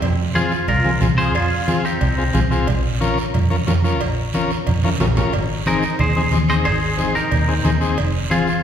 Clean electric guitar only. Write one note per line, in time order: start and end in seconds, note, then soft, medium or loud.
0.35 0.67 F4 medium
0.35 0.68 G#4 medium
0.69 1.00 F4 medium
0.69 0.99 A#4 medium
1.18 1.34 G#4 medium
1.18 1.33 C5 loud
1.35 1.81 F4 medium
1.35 1.81 G#4 loud
1.85 2.47 D#4 medium
1.85 2.47 G4 medium
5.67 5.97 D#4 medium
5.67 6.00 A#4 medium
6.00 6.31 G#4 medium
6.00 6.30 C5 medium
6.50 6.55 C5 medium
6.50 6.54 D#5 medium
6.65 7.12 G#4 medium
6.65 7.12 C5 medium
7.15 7.78 G4 medium
7.15 7.77 A#4 medium
8.31 8.62 F4 medium
8.31 8.62 G#4 medium